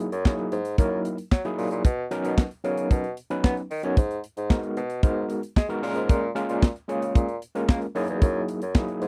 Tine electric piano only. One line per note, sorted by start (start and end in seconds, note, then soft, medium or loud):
0.25 0.55 F#3 medium
0.25 0.55 A#3 medium
0.25 0.56 D#4 medium
0.25 0.56 E4 medium
0.25 0.56 G#4 loud
0.78 1.16 F#3 medium
0.78 1.16 A#3 medium
0.78 1.16 D#4 medium
0.78 1.16 E4 medium
0.78 1.16 A#4 medium
1.45 1.82 F#3 loud
1.45 1.82 A#3 medium
1.45 1.82 D#4 medium
1.45 1.83 E4 medium
1.45 1.83 G#4 loud
2.11 2.41 F#3 loud
2.11 2.41 B3 medium
2.11 2.41 C#4 loud
2.11 2.41 D#4 loud
2.11 2.41 A#4 loud
2.64 3.02 F#3 medium
2.64 3.02 B3 medium
2.64 3.02 C#4 medium
2.64 3.02 D#4 medium
2.64 3.02 A#4 loud
3.30 3.60 F#3 medium
3.30 3.61 B3 medium
3.30 3.61 C#4 medium
3.30 3.61 D#4 medium
3.30 3.61 B4 loud
3.83 3.97 F#3 loud
3.83 3.97 B3 medium
3.83 3.97 C#4 medium
3.83 3.97 D#4 medium
3.83 3.97 C#5 loud
4.50 4.80 G#3 medium
4.50 4.80 B3 medium
4.50 4.80 D#4 medium
4.50 4.80 F#4 medium
4.50 4.80 A#4 loud
5.03 5.41 G#3 medium
5.03 5.41 B3 medium
5.03 5.41 D#4 medium
5.03 5.41 F#4 medium
5.03 5.41 A#4 loud
5.69 5.81 G#3 medium
5.69 5.83 B3 medium
5.69 5.83 D#4 medium
5.69 5.83 F#4 medium
5.69 5.82 A#4 loud
5.82 6.25 G#3 medium
5.82 6.25 A#3 medium
5.82 6.25 C#4 medium
5.82 6.25 F4 medium
5.82 6.25 A#4 loud
6.35 6.65 G#3 loud
6.35 6.66 A#3 medium
6.35 6.66 C#4 loud
6.35 6.66 F4 loud
6.35 6.66 A#4 loud
6.88 7.26 G#3 medium
6.88 7.26 A#3 medium
6.88 7.26 C#4 medium
6.88 7.26 F4 medium
6.88 7.27 G#4 loud
7.55 7.85 G#3 medium
7.55 7.85 A#3 medium
7.55 7.85 C#4 medium
7.55 7.85 F4 medium
7.55 7.86 A#4 loud
7.95 8.59 F#3 loud
7.95 8.59 A#3 medium
7.95 8.59 D#4 medium
7.95 8.59 E4 medium
7.95 8.59 G#4 loud
8.74 9.05 F#3 medium
8.74 9.05 A#3 medium
8.74 9.05 D#4 medium
8.74 9.05 E4 medium
8.74 9.05 G#4 loud